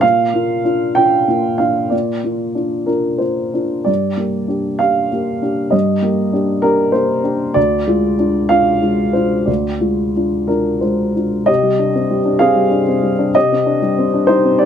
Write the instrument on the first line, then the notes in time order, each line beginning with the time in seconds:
upright piano
0.01 A#2 F5
0.34 A#3 F4
0.65 D4 F4
0.95 D4 F4 G5
1.28 A#3 F4
1.58 D4 F4 F5
1.90 A#2 D5
2.24 A#3 F4
2.55 D4 F4
2.86 D4 F4 A#4
3.18 A#3 F4 C5
3.54 D4 F4
3.84 G2 D5
4.17 A#3 G4
4.48 D4 G4
4.79 D4 G4 F5
5.12 A#3 G4
5.42 D4 G4
5.70 G2 D#5
6.02 A#3 G4
6.33 D4 G4
6.62 D4 G4 A#4
6.92 A#3 G4 C5
7.23 D4 G4
7.54 D2 D5
7.87 G#3 F4
8.19 D4 F4
8.49 D4 F4 F5
8.82 G#3 F4
9.13 D4 F4 C5
9.45 D2 D5
9.81 G#3 F4
10.16 D4 F4
10.47 D4 F4 A#4
10.81 G#3 F4 C5
11.16 D4 F4
11.46 C3 G4 D#5
11.62 G3
11.79 D4
11.95 C4
12.11 G3
12.25 D4
12.39 C4 G#4 F5
12.55 G3
12.71 D4
12.88 C4
13.03 G3
13.19 D4
13.35 C3 G4 D#5
13.52 C4
13.66 D4
13.82 G3
13.98 C4
14.14 D4
14.27 G3 D#4 C5
14.45 C4
14.59 D4 G4 D5